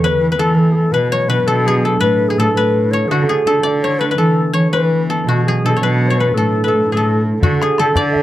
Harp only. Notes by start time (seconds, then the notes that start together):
Already playing: E3 A3 E4
0.02 B3
0.19 E3
0.36 B3
0.56 E3
0.73 B3
0.92 B2
1.11 F#3
1.29 D4
1.45 F#4
1.65 F#3
1.82 D4
2.01 A3
2.20 E4
2.38 A3
2.56 E4
2.74 A3
2.91 E4
3.10 D3
3.29 A3
3.47 D4
3.65 A3
3.83 D4
4.01 A3
4.18 E3
4.38 B3
4.55 E3
4.73 B3
4.92 E3
5.10 B3
5.27 B2
5.47 F#3
5.64 D4
5.82 F#3
6.02 D4
6.18 F#3
6.37 A3
6.56 E4
6.73 A3
6.90 E4
7.08 A3
7.26 E4
7.44 D3
7.97 D4 F#4 A4